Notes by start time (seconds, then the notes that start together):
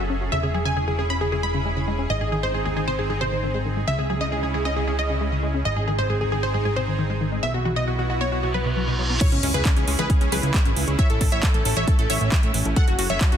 Already playing: F#1 F#3 C#4 G#4 A4 E5
0.10 C#4
0.21 F#4
0.32 E1 C#3 E4 E5
0.43 C#3 G#4
0.54 F#3 G#4
0.65 C#3 G#5
0.76 C#3 G#4
0.88 C#3 G#4
0.99 C#3 G#4
1.10 C#4 B5
1.21 C#3 G#4
1.32 C#3 G#4
1.43 G#3 B5
1.54 C#3
1.65 G#3
1.77 C#3
1.88 G#3
1.99 C#4
2.10 G#1 G#2 C4 D#4 D#5
2.21 G#2 G#4
2.32 D#3 G#4
2.43 G#2 C5
2.54 G#2 G#4
2.65 D#2 G#4
2.77 D#3 G#4
2.88 C3 C5
2.99 G#2 G#4
3.10 G#2 G#4
3.21 C3 C5
3.32 D#3
3.43 D#3
3.54 G#3
3.65 D#3
3.77 G#3
3.88 C#2 C#3 C#4 E4 E5
3.99 C#3 G#4
4.10 F#3 G#4
4.21 C#3 D#5
4.32 C#3 G#4
4.43 C#3 G#4
4.54 C#3 G#4
4.65 C#4 D#5
4.76 C#3 G#4
4.88 C#3 G#4
4.99 G#3 D#5
5.10 C#3
5.21 G#3
5.32 C#3
5.43 G#3
5.54 C#4
5.65 G#1 G#2 C4 D#4 G#4 D#5
5.76 G#2 G#4
5.88 D#3 G#4
5.99 G#2 C5
6.10 G#2 G#4
6.21 D#2 G#4
6.32 D#3 G#4
6.43 C3 C5
6.54 G#2 G#4
6.65 G#2 G#4
6.76 C3 C5
6.88 D#3
6.99 D#3
7.10 G#3
7.21 D#3
7.32 G#3
7.43 B1 B2 B3 E4 F#4 E5
7.54 B2 F#4
7.65 E3 F#4
7.76 B2 D#5
7.87 B2 F#4
7.99 B2 F#4
8.10 B2 F#4
8.21 B3 C#5
8.32 B2 F#4, reverse cymbal
8.43 B2 F#4
8.54 F#3 B4
8.65 B2
8.77 F#3
8.88 B2
8.99 F#3
9.10 B3
9.21 C#3 C#4 E4 G#4 C#5, kick, closed hi-hat, crash, sub drop
9.32 C#2 C#3 C#4, closed hi-hat
9.43 C#2 G#3 C#4, open hi-hat
9.54 C#2 C#3 G#4 B4, closed hi-hat
9.65 C#3 C#4, kick, clap, closed hi-hat
9.76 C#2 G#2 C#4, closed hi-hat
9.88 C#2 G#3 C#4, open hi-hat
9.99 C#2 E3 G#4 B4, closed hi-hat
10.10 C#3 C#4, kick, closed hi-hat
10.21 C#2 C#3 C#4, closed hi-hat
10.32 C#2 F#3 G#4 B4, open hi-hat
10.43 C#2 G#3, closed hi-hat
10.54 G#3, kick, clap, closed hi-hat
10.65 G#1 C#4, closed hi-hat
10.76 C#2 G#3, open hi-hat
10.88 C#2 C#4, closed hi-hat
10.99 A2 A3 C#5 E5, kick, closed hi-hat
11.10 A1 A2 A4, closed hi-hat
11.21 A1 D#3 A4, kick, open hi-hat
11.32 A1 A2 C#5 E5, closed hi-hat
11.43 A4, kick, clap, closed hi-hat
11.54 A1 A2 A4, closed hi-hat
11.65 A1 A2 A4, open hi-hat
11.77 A1 A3 C#5 E5, closed hi-hat
11.88 A2 A4, kick, closed hi-hat
11.99 A1 A2 A4, closed hi-hat
12.10 A1 E3 C#5 E5, open hi-hat
12.21 A1 A2, closed hi-hat
12.32 E3, kick, clap, closed hi-hat
12.43 A2, closed hi-hat
12.54 A1 E3, open hi-hat
12.65 A1 A3, closed hi-hat
12.76 F#3 G#4 A4 F#5, kick, closed hi-hat
12.88 F#1 F#3 F#4, closed hi-hat
12.99 F#1 C#4 F#4, open hi-hat
13.10 F#1 F#3 C#5 E5, closed hi-hat
13.21 F#3 F#4, kick, clap, closed hi-hat
13.32 F#1 C#3 F#4, closed hi-hat